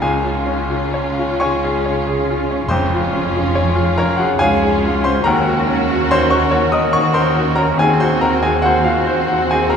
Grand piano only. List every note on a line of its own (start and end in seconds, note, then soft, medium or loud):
0.02 2.64 C#2 medium
0.02 1.36 G#4 soft
0.02 1.36 F5 medium
0.02 1.36 G#5 medium
0.24 0.60 F4 medium
0.46 0.83 C#4 medium
0.69 1.07 F4 medium
0.94 1.31 C#5 medium
1.19 1.55 F4 medium
1.40 1.84 C#5 medium
1.40 2.65 G#5 medium
1.40 2.64 C#6 medium
1.64 1.98 G#4 medium
1.86 2.19 C#5 medium
2.07 2.40 G#4 medium
2.30 2.62 F4 medium
2.51 2.70 C#4 soft
2.68 5.22 F2 medium
2.68 3.93 C5 medium
2.68 3.92 C6 medium
2.94 3.25 F4 medium
3.13 3.46 C#4 medium
3.36 3.68 F4 medium
3.55 3.89 C#5 medium
3.76 4.10 F4 medium
3.98 4.17 A#4 medium
3.98 4.32 C#5 medium
3.98 4.17 A#5 medium
4.17 4.38 F#4 medium
4.17 4.38 G#4 medium
4.17 4.38 F#5 medium
4.39 4.62 G#4 medium
4.39 4.75 C#5 medium
4.39 5.00 F5 medium
4.39 5.00 G#5 loud
4.63 4.96 G#4 medium
4.85 5.18 F4 medium
5.04 5.26 C#4 medium
5.04 5.24 C5 medium
5.04 5.24 C6 medium
5.24 7.74 D#2 medium
5.24 6.07 A#4 medium
5.24 6.07 F#5 medium
5.24 6.06 A#5 medium
5.48 5.81 F#4 medium
5.68 6.02 C#4 medium
5.91 6.24 F#4 medium
6.11 6.30 C5 medium
6.11 6.30 C#5 medium
6.11 6.30 C6 loud
6.30 6.64 F#4 medium
6.30 6.50 C#5 medium
6.30 6.69 C#6 medium
6.51 6.84 C#5 medium
6.72 7.05 A#4 medium
6.72 6.92 D#5 medium
6.72 6.91 D#6 medium
6.93 7.26 C#5 medium
6.93 7.12 C#6 loud
7.14 7.48 A#4 medium
7.14 7.53 C5 medium
7.14 7.53 C6 medium
7.34 7.69 F#4 medium
7.55 7.78 C#4 medium
7.55 7.76 A#4 medium
7.55 7.76 A#5 medium
7.78 9.77 D#2 medium
7.78 7.99 G#4 medium
7.78 7.98 G#5 medium
8.00 8.35 F#4 medium
8.00 8.20 C5 medium
8.00 8.20 C6 medium
8.21 8.56 C4 medium
8.21 8.42 A#4 medium
8.21 8.41 A#5 medium
8.43 8.62 F#4 medium
8.43 8.63 G#4 medium
8.43 8.63 G#5 medium
8.62 8.84 F#4 medium
8.62 8.99 C5 medium
8.62 8.83 F#5 medium
8.84 9.25 F4 medium
8.84 9.21 F#4 medium
8.84 9.25 F5 medium
9.07 9.42 C5 medium
9.28 9.49 F#4 medium
9.28 9.49 F#5 medium
9.51 9.71 G#4 medium
9.51 9.77 C5 medium
9.51 9.71 G#5 medium
9.70 9.77 F#4 medium
9.70 9.77 A#4 medium
9.70 9.77 A#5 medium